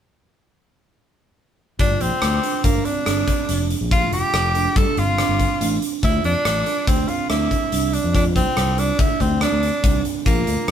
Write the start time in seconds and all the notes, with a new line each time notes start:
1.79 G1 D4 F4, kick, closed hi-hat
2.01 A#1 C4, closed hi-hat
2.22 D2, cross-stick, closed hi-hat
2.43 D4, closed hi-hat
2.64 G1 A#3 D4, kick, closed hi-hat
2.85 C4 D4, closed hi-hat
3.06 G1 D4, cross-stick, closed hi-hat
3.28 kick, closed hi-hat
3.49 F1 D4, closed hi-hat
3.70 closed hi-hat
3.81 A#1
3.91 F4, kick, closed hi-hat
4.12 F1 G4, closed hi-hat
4.33 F1, cross-stick, closed hi-hat
4.54 D4, closed hi-hat
4.76 G2 A4, kick, closed hi-hat
4.97 G1 C4 F4, closed hi-hat
5.18 D4, cross-stick, closed hi-hat
5.29 G1
5.39 kick, closed hi-hat
5.61 A1 D4, closed hi-hat
5.82 closed hi-hat
6.02 D2 E4 F4, kick, closed hi-hat
6.24 F2 D4, closed hi-hat
6.45 A1, cross-stick, closed hi-hat
6.66 D4, closed hi-hat
6.87 D2 C4 D4, kick, closed hi-hat
7.08 C4 F4, closed hi-hat
7.29 D2 D4 E4, cross-stick, closed hi-hat
7.51 kick, closed hi-hat
7.72 C2 D4, closed hi-hat
7.93 D4, closed hi-hat
8.04 F2
8.14 D4 F4, kick, closed hi-hat
8.36 C2 C4, kick, closed hi-hat
8.57 C2, cross-stick, closed hi-hat
8.77 D4, closed hi-hat
8.99 D3 D4 E4, kick, closed hi-hat
9.20 D2 C4, kick, closed hi-hat
9.41 D4, cross-stick, closed hi-hat
9.52 D2
9.63 closed hi-hat
9.83 C2 D4, kick, closed hi-hat
10.05 closed hi-hat
10.26 A#1 A#3 F4, kick, closed hi-hat
10.47 D2, closed hi-hat
10.68 F2